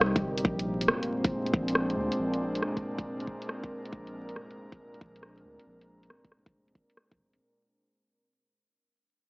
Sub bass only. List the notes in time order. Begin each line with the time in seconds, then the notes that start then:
Already playing: C2
0.23 G1
0.45 A#1
0.88 F1
1.54 A#1
1.97 D2
2.19 A#1
2.62 F1
3.93 A#1
4.36 F1
5.01 A#1
5.45 D2
5.66 A#1
6.10 F1
7.12 D2
7.19 F1